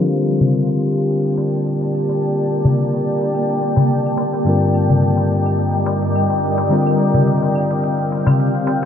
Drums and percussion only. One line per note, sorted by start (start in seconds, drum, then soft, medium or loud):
0.13 closed hi-hat soft
0.41 closed hi-hat soft
0.41 darbuka dum medium
0.55 closed hi-hat soft
0.55 claves medium
0.68 closed hi-hat soft
0.68 darbuka ka soft
0.98 closed hi-hat soft
1.11 closed hi-hat medium
1.26 closed hi-hat soft
1.26 claves medium
1.38 darbuka tek medium
1.53 closed hi-hat soft
1.67 closed hi-hat soft
1.81 closed hi-hat soft
1.81 darbuka ka soft
1.95 claves medium
2.09 closed hi-hat soft
2.09 darbuka tek soft
2.22 closed hi-hat medium
2.37 closed hi-hat soft
2.65 closed hi-hat soft
2.65 darbuka dum medium
2.65 claves medium
2.78 closed hi-hat soft
2.93 closed hi-hat soft
2.93 darbuka ka soft
3.21 closed hi-hat soft
3.21 darbuka tek soft
3.35 closed hi-hat soft
3.35 claves medium
3.50 closed hi-hat soft
3.61 darbuka ka soft
3.76 closed hi-hat soft
3.76 darbuka tek medium
3.76 darbuka dum medium
3.90 closed hi-hat medium
4.06 closed hi-hat soft
4.06 claves medium
4.17 darbuka tek medium
4.34 closed hi-hat soft
4.34 darbuka tek soft
4.47 closed hi-hat soft
4.62 closed hi-hat soft
4.74 claves medium
4.89 closed hi-hat soft
4.89 darbuka dum medium
5.03 closed hi-hat soft
5.17 closed hi-hat soft
5.17 darbuka ka soft
5.46 closed hi-hat soft
5.46 claves medium
5.59 closed hi-hat soft
5.74 closed hi-hat soft
5.86 darbuka tek medium
6.02 closed hi-hat soft
6.16 closed hi-hat soft
6.16 claves medium
6.30 closed hi-hat soft
6.30 darbuka ka soft
6.58 closed hi-hat soft
6.58 darbuka tek medium
6.71 closed hi-hat soft
6.86 closed hi-hat soft
6.86 claves medium
7.14 closed hi-hat soft
7.14 darbuka dum medium
7.27 closed hi-hat soft
7.42 closed hi-hat soft
7.42 darbuka ka soft
7.55 claves medium
7.70 closed hi-hat soft
7.70 darbuka tek soft
7.84 closed hi-hat soft
7.99 closed hi-hat soft
8.12 darbuka ka soft
8.27 closed hi-hat soft
8.27 darbuka tek medium
8.27 darbuka dum medium
8.27 claves medium
8.40 closed hi-hat soft
8.55 closed hi-hat soft
8.67 darbuka tek medium